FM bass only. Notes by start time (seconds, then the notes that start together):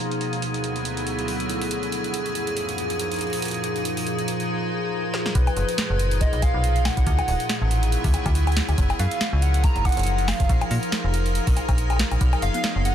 5.35 B1
5.57 F#1
5.90 F#1
6.33 B1
6.54 B1
6.97 B1
7.07 D2
7.28 D1
7.61 A1
8.04 D2
8.26 D2
8.69 D2
8.78 F#1
8.99 F#2
9.33 C#2
9.76 F#1
9.97 F#1
10.40 F#1
10.49 A#1
10.71 A#2
11.04 F1
11.47 A#1
11.69 A#1
12.11 A#1
12.21 B1
12.42 F#1
12.76 F#1